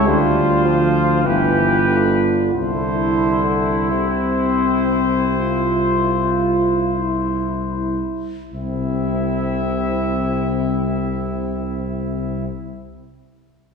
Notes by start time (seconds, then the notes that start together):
0.07 D2 G3 F4 C5
0.65 F3
1.25 G1 E3 F4 G4 B4
1.89 D3
2.53 C2 D3 E4 C5
3.90 C3 C4 C5
5.38 F4
6.92 E4
8.52 C2 C3 C4 E4 E5